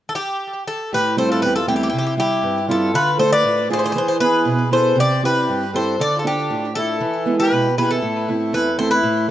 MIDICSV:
0, 0, Header, 1, 4, 480
1, 0, Start_track
1, 0, Key_signature, 0, "minor"
1, 0, Tempo, 506329
1, 877, Time_signature, 2, 2, 24, 8
1, 8824, End_track
2, 0, Start_track
2, 0, Title_t, "Bouzouki"
2, 0, Program_c, 0, 25
2, 86, Note_on_c, 0, 69, 61
2, 140, Note_off_c, 0, 69, 0
2, 143, Note_on_c, 0, 67, 80
2, 596, Note_off_c, 0, 67, 0
2, 640, Note_on_c, 0, 69, 77
2, 862, Note_off_c, 0, 69, 0
2, 894, Note_on_c, 0, 71, 83
2, 1118, Note_off_c, 0, 71, 0
2, 1122, Note_on_c, 0, 72, 77
2, 1231, Note_off_c, 0, 72, 0
2, 1248, Note_on_c, 0, 69, 75
2, 1344, Note_off_c, 0, 69, 0
2, 1348, Note_on_c, 0, 71, 80
2, 1471, Note_off_c, 0, 71, 0
2, 1475, Note_on_c, 0, 69, 78
2, 1588, Note_off_c, 0, 69, 0
2, 1597, Note_on_c, 0, 67, 76
2, 1657, Note_off_c, 0, 67, 0
2, 1668, Note_on_c, 0, 67, 59
2, 1725, Note_off_c, 0, 67, 0
2, 1736, Note_on_c, 0, 67, 69
2, 1785, Note_off_c, 0, 67, 0
2, 1797, Note_on_c, 0, 67, 65
2, 1870, Note_off_c, 0, 67, 0
2, 1881, Note_on_c, 0, 67, 69
2, 1949, Note_off_c, 0, 67, 0
2, 1958, Note_on_c, 0, 67, 58
2, 2023, Note_off_c, 0, 67, 0
2, 2083, Note_on_c, 0, 67, 81
2, 2527, Note_off_c, 0, 67, 0
2, 2571, Note_on_c, 0, 69, 85
2, 2797, Note_on_c, 0, 71, 95
2, 2812, Note_off_c, 0, 69, 0
2, 3021, Note_off_c, 0, 71, 0
2, 3029, Note_on_c, 0, 72, 86
2, 3149, Note_off_c, 0, 72, 0
2, 3152, Note_on_c, 0, 74, 97
2, 3490, Note_off_c, 0, 74, 0
2, 3540, Note_on_c, 0, 72, 93
2, 3582, Note_off_c, 0, 72, 0
2, 3593, Note_on_c, 0, 72, 63
2, 3644, Note_off_c, 0, 72, 0
2, 3656, Note_on_c, 0, 72, 83
2, 3706, Note_off_c, 0, 72, 0
2, 3717, Note_on_c, 0, 72, 75
2, 3764, Note_off_c, 0, 72, 0
2, 3775, Note_on_c, 0, 72, 76
2, 3855, Note_off_c, 0, 72, 0
2, 3871, Note_on_c, 0, 72, 73
2, 3940, Note_off_c, 0, 72, 0
2, 3986, Note_on_c, 0, 71, 95
2, 4439, Note_off_c, 0, 71, 0
2, 4483, Note_on_c, 0, 72, 89
2, 4729, Note_off_c, 0, 72, 0
2, 4741, Note_on_c, 0, 74, 102
2, 4954, Note_off_c, 0, 74, 0
2, 4979, Note_on_c, 0, 71, 79
2, 5417, Note_off_c, 0, 71, 0
2, 5457, Note_on_c, 0, 72, 81
2, 5696, Note_off_c, 0, 72, 0
2, 5700, Note_on_c, 0, 74, 97
2, 5852, Note_off_c, 0, 74, 0
2, 5868, Note_on_c, 0, 69, 54
2, 5928, Note_off_c, 0, 69, 0
2, 5945, Note_on_c, 0, 67, 79
2, 6381, Note_off_c, 0, 67, 0
2, 6403, Note_on_c, 0, 69, 77
2, 7012, Note_on_c, 0, 71, 81
2, 7020, Note_off_c, 0, 69, 0
2, 7342, Note_off_c, 0, 71, 0
2, 7377, Note_on_c, 0, 71, 71
2, 7482, Note_off_c, 0, 71, 0
2, 7494, Note_on_c, 0, 69, 75
2, 8097, Note_on_c, 0, 71, 81
2, 8290, Note_off_c, 0, 69, 0
2, 8313, Note_off_c, 0, 71, 0
2, 8330, Note_on_c, 0, 72, 86
2, 8437, Note_off_c, 0, 72, 0
2, 8445, Note_on_c, 0, 71, 86
2, 8814, Note_off_c, 0, 71, 0
2, 8824, End_track
3, 0, Start_track
3, 0, Title_t, "Accordion"
3, 0, Program_c, 1, 21
3, 876, Note_on_c, 1, 67, 76
3, 1100, Note_off_c, 1, 67, 0
3, 1114, Note_on_c, 1, 69, 73
3, 1219, Note_on_c, 1, 65, 74
3, 1227, Note_off_c, 1, 69, 0
3, 1339, Note_off_c, 1, 65, 0
3, 1371, Note_on_c, 1, 67, 66
3, 1474, Note_on_c, 1, 65, 68
3, 1476, Note_off_c, 1, 67, 0
3, 1583, Note_on_c, 1, 64, 66
3, 1587, Note_off_c, 1, 65, 0
3, 2036, Note_off_c, 1, 64, 0
3, 2068, Note_on_c, 1, 64, 70
3, 2519, Note_off_c, 1, 64, 0
3, 2542, Note_on_c, 1, 65, 71
3, 2768, Note_off_c, 1, 65, 0
3, 2782, Note_on_c, 1, 65, 85
3, 3013, Note_off_c, 1, 65, 0
3, 3018, Note_on_c, 1, 69, 78
3, 3139, Note_off_c, 1, 69, 0
3, 3151, Note_on_c, 1, 71, 96
3, 3489, Note_off_c, 1, 71, 0
3, 3512, Note_on_c, 1, 68, 74
3, 3962, Note_off_c, 1, 68, 0
3, 4012, Note_on_c, 1, 68, 75
3, 4453, Note_off_c, 1, 68, 0
3, 4483, Note_on_c, 1, 69, 71
3, 4705, Note_off_c, 1, 69, 0
3, 4716, Note_on_c, 1, 67, 81
3, 4941, Note_off_c, 1, 67, 0
3, 4968, Note_on_c, 1, 67, 79
3, 5411, Note_off_c, 1, 67, 0
3, 5441, Note_on_c, 1, 69, 69
3, 5654, Note_off_c, 1, 69, 0
3, 5668, Note_on_c, 1, 69, 79
3, 5835, Note_off_c, 1, 69, 0
3, 5836, Note_on_c, 1, 65, 50
3, 5906, Note_off_c, 1, 65, 0
3, 5931, Note_on_c, 1, 62, 70
3, 6373, Note_off_c, 1, 62, 0
3, 6416, Note_on_c, 1, 64, 69
3, 6971, Note_off_c, 1, 64, 0
3, 7024, Note_on_c, 1, 67, 81
3, 7349, Note_off_c, 1, 67, 0
3, 7395, Note_on_c, 1, 67, 61
3, 7491, Note_off_c, 1, 67, 0
3, 7513, Note_on_c, 1, 64, 67
3, 8084, Note_off_c, 1, 64, 0
3, 8098, Note_on_c, 1, 64, 71
3, 8313, Note_off_c, 1, 64, 0
3, 8339, Note_on_c, 1, 69, 59
3, 8442, Note_off_c, 1, 69, 0
3, 8455, Note_on_c, 1, 64, 83
3, 8784, Note_off_c, 1, 64, 0
3, 8824, End_track
4, 0, Start_track
4, 0, Title_t, "Steel-string acoustic guitar"
4, 0, Program_c, 2, 25
4, 878, Note_on_c, 2, 45, 66
4, 1105, Note_on_c, 2, 55, 45
4, 1110, Note_on_c, 2, 57, 39
4, 1111, Note_on_c, 2, 60, 49
4, 1343, Note_off_c, 2, 45, 0
4, 1355, Note_on_c, 2, 40, 61
4, 1495, Note_off_c, 2, 55, 0
4, 1495, Note_off_c, 2, 57, 0
4, 1497, Note_off_c, 2, 60, 0
4, 1589, Note_on_c, 2, 55, 49
4, 1589, Note_on_c, 2, 57, 38
4, 1598, Note_on_c, 2, 60, 46
4, 1784, Note_off_c, 2, 55, 0
4, 1784, Note_off_c, 2, 57, 0
4, 1790, Note_off_c, 2, 60, 0
4, 1822, Note_off_c, 2, 40, 0
4, 1829, Note_on_c, 2, 48, 63
4, 2057, Note_on_c, 2, 55, 45
4, 2063, Note_on_c, 2, 64, 49
4, 2066, Note_on_c, 2, 60, 39
4, 2299, Note_off_c, 2, 48, 0
4, 2302, Note_on_c, 2, 43, 62
4, 2450, Note_off_c, 2, 55, 0
4, 2453, Note_off_c, 2, 60, 0
4, 2453, Note_off_c, 2, 64, 0
4, 2545, Note_on_c, 2, 55, 43
4, 2546, Note_on_c, 2, 60, 40
4, 2553, Note_on_c, 2, 64, 53
4, 2742, Note_off_c, 2, 55, 0
4, 2742, Note_off_c, 2, 60, 0
4, 2747, Note_off_c, 2, 64, 0
4, 2776, Note_off_c, 2, 43, 0
4, 2787, Note_on_c, 2, 50, 68
4, 3019, Note_on_c, 2, 57, 46
4, 3024, Note_on_c, 2, 62, 41
4, 3029, Note_on_c, 2, 65, 53
4, 3258, Note_off_c, 2, 50, 0
4, 3263, Note_on_c, 2, 45, 65
4, 3411, Note_off_c, 2, 57, 0
4, 3414, Note_off_c, 2, 62, 0
4, 3416, Note_off_c, 2, 65, 0
4, 3503, Note_on_c, 2, 57, 47
4, 3507, Note_on_c, 2, 62, 45
4, 3512, Note_on_c, 2, 65, 49
4, 3701, Note_off_c, 2, 57, 0
4, 3704, Note_off_c, 2, 62, 0
4, 3707, Note_off_c, 2, 65, 0
4, 3737, Note_off_c, 2, 45, 0
4, 3744, Note_on_c, 2, 52, 64
4, 3984, Note_on_c, 2, 59, 46
4, 3989, Note_on_c, 2, 64, 39
4, 3993, Note_on_c, 2, 68, 50
4, 4217, Note_off_c, 2, 52, 0
4, 4221, Note_on_c, 2, 47, 61
4, 4374, Note_off_c, 2, 59, 0
4, 4377, Note_off_c, 2, 64, 0
4, 4380, Note_off_c, 2, 68, 0
4, 4461, Note_on_c, 2, 59, 43
4, 4468, Note_on_c, 2, 64, 42
4, 4475, Note_on_c, 2, 68, 45
4, 4661, Note_off_c, 2, 59, 0
4, 4665, Note_off_c, 2, 64, 0
4, 4669, Note_off_c, 2, 68, 0
4, 4694, Note_off_c, 2, 47, 0
4, 4698, Note_on_c, 2, 48, 67
4, 4955, Note_on_c, 2, 60, 41
4, 4958, Note_on_c, 2, 64, 36
4, 4960, Note_on_c, 2, 67, 46
4, 5174, Note_off_c, 2, 48, 0
4, 5203, Note_on_c, 2, 43, 61
4, 5341, Note_off_c, 2, 60, 0
4, 5344, Note_off_c, 2, 64, 0
4, 5344, Note_off_c, 2, 67, 0
4, 5438, Note_on_c, 2, 60, 44
4, 5448, Note_on_c, 2, 64, 38
4, 5450, Note_on_c, 2, 67, 46
4, 5631, Note_off_c, 2, 60, 0
4, 5637, Note_off_c, 2, 67, 0
4, 5638, Note_off_c, 2, 64, 0
4, 5667, Note_off_c, 2, 43, 0
4, 5683, Note_on_c, 2, 50, 66
4, 5917, Note_on_c, 2, 62, 46
4, 5921, Note_on_c, 2, 65, 41
4, 5925, Note_on_c, 2, 69, 49
4, 6148, Note_off_c, 2, 50, 0
4, 6165, Note_on_c, 2, 45, 61
4, 6304, Note_off_c, 2, 62, 0
4, 6305, Note_off_c, 2, 65, 0
4, 6306, Note_off_c, 2, 69, 0
4, 6409, Note_on_c, 2, 62, 47
4, 6413, Note_on_c, 2, 65, 45
4, 6419, Note_on_c, 2, 69, 49
4, 6598, Note_off_c, 2, 62, 0
4, 6601, Note_off_c, 2, 65, 0
4, 6604, Note_off_c, 2, 69, 0
4, 6629, Note_off_c, 2, 45, 0
4, 6641, Note_on_c, 2, 52, 64
4, 6879, Note_on_c, 2, 59, 44
4, 6884, Note_on_c, 2, 64, 39
4, 6889, Note_on_c, 2, 56, 48
4, 7107, Note_off_c, 2, 52, 0
4, 7125, Note_on_c, 2, 47, 71
4, 7264, Note_off_c, 2, 59, 0
4, 7267, Note_off_c, 2, 64, 0
4, 7270, Note_off_c, 2, 56, 0
4, 7374, Note_on_c, 2, 59, 41
4, 7374, Note_on_c, 2, 64, 39
4, 7382, Note_on_c, 2, 68, 50
4, 7560, Note_off_c, 2, 64, 0
4, 7561, Note_off_c, 2, 59, 0
4, 7566, Note_off_c, 2, 68, 0
4, 7589, Note_off_c, 2, 47, 0
4, 7606, Note_on_c, 2, 45, 67
4, 7854, Note_on_c, 2, 57, 46
4, 7861, Note_on_c, 2, 60, 40
4, 7861, Note_on_c, 2, 64, 52
4, 8069, Note_off_c, 2, 45, 0
4, 8087, Note_on_c, 2, 40, 68
4, 8234, Note_off_c, 2, 57, 0
4, 8236, Note_off_c, 2, 60, 0
4, 8237, Note_off_c, 2, 64, 0
4, 8322, Note_on_c, 2, 57, 43
4, 8325, Note_on_c, 2, 60, 38
4, 8327, Note_on_c, 2, 64, 52
4, 8514, Note_off_c, 2, 57, 0
4, 8514, Note_off_c, 2, 60, 0
4, 8517, Note_off_c, 2, 64, 0
4, 8550, Note_off_c, 2, 40, 0
4, 8562, Note_on_c, 2, 45, 72
4, 8824, Note_off_c, 2, 45, 0
4, 8824, End_track
0, 0, End_of_file